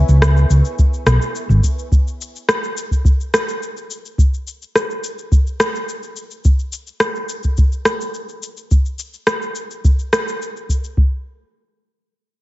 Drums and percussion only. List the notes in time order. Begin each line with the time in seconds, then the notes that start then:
0.09 cabasa
0.22 cross-stick, cabasa
0.37 cabasa
0.50 cabasa
0.65 cabasa
0.79 kick, cabasa
0.94 cabasa
1.07 cross-stick, cabasa
1.22 cabasa
1.35 cabasa
1.50 cabasa
1.64 kick, cabasa
1.79 cabasa
1.92 kick, cabasa
2.08 cabasa
2.21 cabasa
2.36 cabasa
2.49 cross-stick, cabasa
2.64 cabasa
2.77 cabasa
2.91 kick, cabasa
3.05 kick, cabasa
3.21 cabasa
3.34 cross-stick, cabasa
3.49 cabasa
3.63 cabasa
3.77 cabasa
3.91 cabasa
4.05 cabasa
4.18 kick, cabasa
4.34 cabasa
4.47 cabasa
4.62 cabasa
4.76 cross-stick, cabasa
4.90 cabasa
5.04 cabasa
5.18 cabasa
5.32 kick, cabasa
5.47 cabasa
5.60 cross-stick, cabasa
5.75 cabasa
5.89 cabasa
6.03 cabasa
6.16 cabasa
6.31 cabasa
6.44 kick, cabasa
6.59 cabasa
6.73 cabasa
6.87 cabasa
7.00 cross-stick, cabasa
7.16 cabasa
7.29 cabasa
7.43 kick, cabasa
7.57 kick, cabasa
7.72 cabasa
7.85 cross-stick, cabasa
8.01 cabasa
8.14 cabasa
8.29 cabasa
8.43 cabasa
8.57 cabasa
8.71 kick, cabasa
8.86 cabasa
8.99 cabasa
9.14 cabasa
9.27 cross-stick, cabasa
9.42 cabasa
9.55 cabasa
9.71 cabasa
9.84 kick, cabasa
9.99 cabasa
10.13 cross-stick, cabasa
10.28 cabasa
10.42 cabasa
10.57 cabasa
10.69 kick, cabasa
10.84 cabasa
10.97 kick